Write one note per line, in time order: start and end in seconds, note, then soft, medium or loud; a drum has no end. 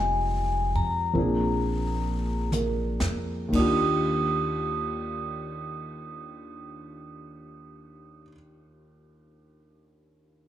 0.00 0.72 F1 medium
0.00 1.12 F3 medium
0.00 1.17 G3 medium
0.00 1.15 G#3 soft
0.00 1.14 C4 soft
0.00 1.16 D#4 soft
0.00 0.82 G#5 medium
0.75 1.13 F2 medium
0.75 2.49 A#5 medium
1.13 2.97 A#1 medium
1.13 3.53 F3 soft
1.13 3.53 A#3 soft
1.13 3.54 C4 soft
1.13 3.53 D4 soft
1.13 brush sweep soft
1.18 3.55 G#4 soft
2.52 3.50 A#4 soft
2.52 hi-hat pedal soft
2.52 mid tom soft
3.00 3.50 F2 soft
3.00 snare soft
3.48 8.21 D#2 soft
3.48 8.24 D#3 soft
3.53 8.21 D#2 medium
3.53 8.27 D4 soft
3.53 8.24 D#6 medium
3.53 kick soft
3.53 ride soft
3.57 8.30 F4 medium
3.57 8.33 G4 medium